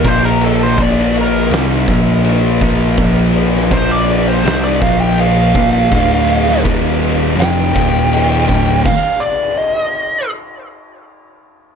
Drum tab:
CC |x-x-x-x-x-x-x-x-|x-x-x-x-x-x-x-x-|x-x-x-x-x-x-x-x-|x---------------|
SD |---o----o-------|---o----o-------|---o----o-------|----------------|
BD |o---o-----o---o-|o---o-----o---o-|o---o-----o---o-|o---------------|